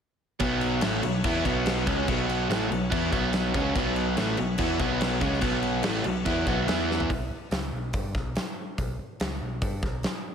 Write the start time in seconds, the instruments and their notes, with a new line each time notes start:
0.39 picked electric bass B1, overdriven electric guitar B2 F#3 B3, tonewheel organ B3 F#4 C#5, kick, crash
0.61 crash
0.81 picked electric bass A1, overdriven electric guitar A2 E3 A3, snare, crash
1.03 picked electric bass B1, overdriven electric guitar B2 F#3, crash
1.24 picked electric bass E2, overdriven electric guitar E3 B3 E4, kick, crash
1.45 picked electric bass B1, overdriven electric guitar B2 F#3 B3, kick, crash
1.66 snare, crash
1.87 picked electric bass C#2, overdriven electric guitar C#3 G#3 C#4, kick, crash
2.08 picked electric bass B1, overdriven electric guitar B2 F#3 B3, kick, crash
2.29 crash
2.49 picked electric bass A1, overdriven electric guitar A2 E3 A3, snare, crash
2.71 picked electric bass B1, overdriven electric guitar B2 F#3, crash
2.92 picked electric bass E2, overdriven electric guitar E3 B3 E4, kick, crash
3.13 picked electric bass B1, overdriven electric guitar B2 F#3 B3, kick, crash
3.33 snare, crash
3.54 picked electric bass C#2, overdriven electric guitar C#3 G#3 C#4, kick, crash
3.75 picked electric bass B1, overdriven electric guitar B2 F#3 B3, kick, crash
3.96 crash
4.17 picked electric bass A1, overdriven electric guitar A2 E3 A3, snare, crash
4.37 picked electric bass B1, overdriven electric guitar B2 F#3, crash
4.58 picked electric bass E2, overdriven electric guitar E3 B3 E4, kick, crash
4.79 picked electric bass B1, overdriven electric guitar B2 F#3 B3, kick, crash
5.01 snare, crash
5.21 picked electric bass C#2, overdriven electric guitar C#3 G#3 C#4, kick, crash
5.33 snare
5.41 picked electric bass B1, overdriven electric guitar B2 F#3 B3, kick, crash
5.63 crash
5.83 picked electric bass A1, overdriven electric guitar A2 E3 A3, snare, crash
6.04 picked electric bass B1, overdriven electric guitar B2 F#3, crash
6.26 picked electric bass E2, overdriven electric guitar E3 B3 E4, kick, crash
6.46 picked electric bass B1, overdriven electric guitar B2 F#3 B3, kick, crash
6.66 picked electric bass E2, overdriven electric guitar E3 B3 E4, tonewheel organ E4 B4 F#5, snare, crash
6.91 snare
7.00 floor tom
7.10 picked electric bass B1, kick, open hi-hat
7.31 muted picked electric bass stroke
7.51 picked electric bass C#2, snare, open hi-hat
7.73 picked electric bass B1
7.93 picked electric bass G2, kick, open hi-hat
8.15 picked electric bass B1, kick, snare
8.36 snare, open hi-hat
8.78 picked electric bass B1, kick, open hi-hat
8.99 muted picked electric bass stroke
9.20 picked electric bass C#2, snare, open hi-hat
9.42 picked electric bass B1
9.62 picked electric bass G2, kick, open hi-hat
9.83 picked electric bass B1, kick, snare
10.03 snare, open hi-hat